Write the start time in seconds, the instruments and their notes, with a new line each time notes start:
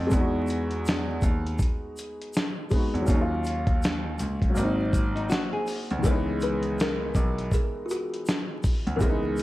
Already playing: felt piano A3 C#4 D#4 F#4
0.00 grand piano F2
0.07 felt piano G#3, shaker
0.11 grand piano E2, felt piano B3, kick, closed hi-hat
0.16 felt piano D#4
0.20 felt piano F#4
0.47 closed hi-hat, shaker
0.71 closed hi-hat
0.86 snare, closed hi-hat, shaker
1.22 grand piano D#2, kick, closed hi-hat, shaker
1.47 closed hi-hat
1.59 kick, closed hi-hat, shaker
1.97 closed hi-hat, shaker
2.21 closed hi-hat
2.34 snare, closed hi-hat, shaker
2.70 felt piano G#3 B3, kick, open hi-hat, shaker
2.75 felt piano D#4 F#4
2.94 grand piano E2, closed hi-hat
3.01 felt piano F#3
3.05 grand piano D#2, felt piano A#3, kick, shaker
3.10 felt piano C#4, closed hi-hat
3.14 felt piano D#4
3.21 felt piano F4
3.44 closed hi-hat, shaker
3.67 kick, closed hi-hat
3.83 snare, closed hi-hat, shaker
4.19 grand piano C#2, closed hi-hat, shaker
4.42 kick, closed hi-hat
4.50 felt piano F#3
4.54 grand piano G#1, felt piano A#3, closed hi-hat, shaker
4.58 felt piano C4
4.63 felt piano D#4
4.93 kick, closed hi-hat, shaker
5.16 nylon-string guitar D#4, closed hi-hat
5.30 nylon-string guitar F#4, snare, closed hi-hat, shaker
5.53 nylon-string guitar G#4
5.67 open hi-hat, shaker
5.90 grand piano D2, closed hi-hat
5.99 felt piano D#3
6.03 grand piano C#2, felt piano E3 G#3, kalimba C#5, kick, closed hi-hat, shaker
6.07 felt piano B3
6.12 felt piano D#4
6.41 kalimba B4, closed hi-hat, shaker
6.63 closed hi-hat
6.79 kalimba A#4, snare, closed hi-hat, shaker
7.15 grand piano B1, kick, closed hi-hat, shaker
7.38 closed hi-hat
7.52 kalimba G#4, kick, closed hi-hat, shaker
7.86 kalimba F4, shaker
7.91 kalimba F#4, closed hi-hat
8.14 closed hi-hat
8.26 snare, closed hi-hat, shaker
8.63 kick, open hi-hat, shaker
8.87 grand piano D2, closed hi-hat
8.96 felt piano E3, kalimba A#4
9.00 grand piano C#2, felt piano G#3, kalimba G#4, kick, closed hi-hat, shaker
9.05 felt piano B3
9.09 felt piano D#4
9.37 closed hi-hat, shaker